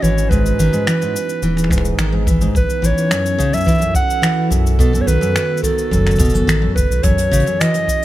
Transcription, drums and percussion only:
0.04 cabasa
0.18 cabasa
0.31 kick, cabasa
0.46 cabasa
0.60 cabasa
0.73 cabasa
0.87 finger snap, cabasa
1.02 cabasa
1.16 cabasa
1.29 cabasa
1.43 cabasa
1.57 finger snap, cabasa
1.64 finger snap
1.71 finger snap, kick, cabasa
1.78 finger snap
1.85 cabasa
1.99 finger snap, cabasa
2.27 kick, cabasa
2.41 cabasa
2.55 kick, cabasa
2.70 cabasa
2.84 cabasa
2.98 cabasa
3.11 finger snap, cabasa
3.26 cabasa
3.40 kick, cabasa
3.54 cabasa
3.57 cabasa
3.60 cabasa
3.64 kick, cabasa
3.68 cabasa
3.71 cabasa
3.75 cabasa
3.78 cabasa
3.82 cabasa
3.95 kick, cabasa
4.10 cabasa
4.23 finger snap, cabasa
4.52 cabasa
4.67 cabasa
4.79 kick, cabasa
4.95 cabasa
5.08 cabasa
5.23 cabasa
5.36 finger snap, cabasa
5.57 cabasa
5.63 kick, cabasa
5.78 cabasa
5.91 kick, cabasa
6.06 finger snap, cabasa
6.11 cabasa
6.16 kick, cabasa
6.19 cabasa
6.29 cabasa
6.35 cabasa
6.49 finger snap, cabasa
6.76 kick, cabasa
6.92 cabasa
7.03 kick, closed hi-hat, cabasa
7.18 closed hi-hat, cabasa
7.33 cabasa
7.40 closed hi-hat
7.47 cabasa
7.61 finger snap, closed hi-hat, cabasa
7.74 closed hi-hat, cabasa
7.88 kick, cabasa

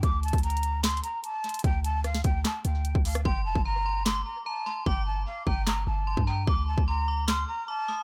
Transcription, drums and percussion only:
0.03 kick, closed hi-hat
0.23 closed hi-hat
0.28 closed hi-hat
0.33 kick, closed hi-hat
0.38 closed hi-hat
0.43 closed hi-hat
0.50 closed hi-hat
0.57 closed hi-hat
0.63 closed hi-hat
0.84 snare, clap, closed hi-hat
0.90 closed hi-hat
0.97 closed hi-hat
1.04 closed hi-hat
1.24 closed hi-hat
1.44 closed hi-hat
1.49 closed hi-hat
1.54 closed hi-hat
1.59 closed hi-hat
1.64 kick, closed hi-hat
1.84 closed hi-hat
2.04 cross-stick, closed hi-hat
2.15 snare
2.24 kick, closed hi-hat
2.45 snare, clap, closed hi-hat
2.65 closed hi-hat
2.85 closed hi-hat
2.95 kick
3.05 closed hi-hat, open hi-hat
3.15 cross-stick, closed hi-hat
3.25 kick
3.55 kick
4.06 snare, clap
4.86 kick
5.47 kick
5.67 snare, clap
6.17 kick
6.47 kick
6.78 kick
7.28 snare, clap

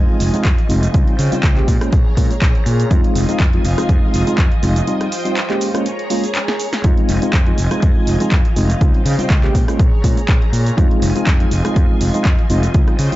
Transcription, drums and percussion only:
0.20 open hi-hat, shaker
0.34 closed hi-hat, shaker
0.45 kick, clap, closed hi-hat, shaker
0.58 closed hi-hat
0.70 open hi-hat, shaker
0.83 closed hi-hat, shaker
0.94 kick, closed hi-hat, shaker
1.08 closed hi-hat
1.19 open hi-hat, shaker
1.32 closed hi-hat, shaker
1.43 kick, clap, closed hi-hat, shaker
1.57 clap, closed hi-hat
1.68 kick, open hi-hat, shaker
1.81 cross-stick, closed hi-hat, shaker
1.93 kick, closed hi-hat, shaker
2.17 kick, open hi-hat, shaker
2.31 closed hi-hat, shaker
2.42 kick, clap, closed hi-hat, shaker
2.55 closed hi-hat
2.66 open hi-hat, shaker
2.80 closed hi-hat, shaker
2.91 kick, closed hi-hat, shaker
3.04 closed hi-hat
3.15 open hi-hat, shaker
3.29 closed hi-hat, shaker
3.40 kick, clap, closed hi-hat, shaker
3.53 closed hi-hat
3.65 open hi-hat, shaker
3.78 cross-stick, closed hi-hat, shaker
3.89 kick, closed hi-hat, shaker
4.14 open hi-hat, shaker
4.27 closed hi-hat, shaker
4.38 kick, clap, closed hi-hat, shaker
4.52 closed hi-hat
4.63 open hi-hat, shaker
4.76 closed hi-hat, shaker
4.87 closed hi-hat, shaker
5.01 cross-stick, closed hi-hat
5.12 open hi-hat, shaker
5.25 closed hi-hat, shaker
5.37 clap, closed hi-hat, shaker
5.50 clap, closed hi-hat
5.61 open hi-hat, shaker
5.75 cross-stick, closed hi-hat, shaker
5.86 closed hi-hat, shaker
5.99 closed hi-hat
6.10 open hi-hat, shaker
6.24 closed hi-hat, shaker
6.35 clap, closed hi-hat, shaker
6.48 snare, closed hi-hat
6.60 open hi-hat, shaker
6.73 snare, closed hi-hat, shaker
6.84 kick, closed hi-hat, shaker
6.97 closed hi-hat
7.09 open hi-hat, shaker
7.22 closed hi-hat, shaker
7.33 kick, clap, closed hi-hat, shaker
7.46 closed hi-hat
7.58 open hi-hat, shaker
7.71 cross-stick, closed hi-hat, shaker
7.82 kick, closed hi-hat, shaker
8.07 open hi-hat, shaker
8.20 closed hi-hat, shaker
8.32 kick, clap, closed hi-hat, shaker
8.45 closed hi-hat
8.56 open hi-hat, shaker
8.70 closed hi-hat, shaker
8.81 kick, closed hi-hat, shaker
8.94 closed hi-hat
9.06 open hi-hat, shaker
9.19 closed hi-hat, shaker
9.30 kick, clap, closed hi-hat, shaker
9.44 clap, closed hi-hat
9.55 kick, open hi-hat, shaker
9.68 cross-stick, closed hi-hat, shaker
9.79 kick, closed hi-hat, shaker
10.04 kick, open hi-hat, shaker
10.17 closed hi-hat, shaker
10.29 kick, clap, closed hi-hat, shaker
10.42 closed hi-hat
10.53 open hi-hat, shaker
10.67 closed hi-hat, shaker
10.78 kick, closed hi-hat, shaker
10.91 closed hi-hat
11.02 open hi-hat, shaker
11.16 closed hi-hat, shaker
11.27 kick, clap, closed hi-hat, shaker
11.40 closed hi-hat
11.51 open hi-hat, shaker
11.65 cross-stick, closed hi-hat, shaker
11.76 kick, closed hi-hat, shaker
12.01 open hi-hat, shaker
12.14 closed hi-hat, shaker
12.25 kick, clap, closed hi-hat, shaker
12.39 closed hi-hat
12.50 open hi-hat, shaker
12.63 closed hi-hat, shaker
12.74 kick, closed hi-hat, shaker
12.88 cross-stick, closed hi-hat
12.99 open hi-hat, shaker
13.12 closed hi-hat, shaker

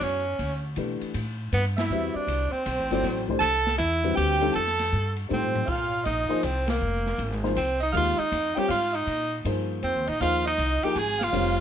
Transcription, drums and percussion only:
0.01 ride
0.39 ride
0.76 hi-hat pedal, ride
1.01 ride
1.14 ride
1.52 hi-hat pedal, ride
1.78 snare, ride
1.91 hi-hat pedal
2.28 ride
2.66 hi-hat pedal, ride
2.91 snare, ride
3.04 snare, ride
3.29 kick
3.41 ride
3.67 snare
3.79 hi-hat pedal, ride
4.04 ride
4.17 hi-hat pedal, ride
4.41 ride
4.54 ride
4.67 snare
4.79 snare, ride
4.92 hi-hat pedal
5.16 ride
5.29 hi-hat pedal
5.42 floor tom
5.55 floor tom
5.68 kick, crash
6.05 hi-hat pedal, ride
6.30 ride
6.43 hi-hat pedal, ride
6.68 snare, ride
7.06 snare
7.19 ride
7.31 snare
7.44 snare
7.56 hi-hat pedal, ride
7.81 ride
7.94 ride
8.32 hi-hat pedal, ride
8.57 ride
8.70 hi-hat pedal, ride
8.94 ride
9.07 ride
9.45 hi-hat pedal, ride
9.83 ride
10.07 ride
10.21 ride
10.59 hi-hat pedal, ride
10.83 ride
10.96 hi-hat pedal, ride
11.21 snare, ride
11.33 ride

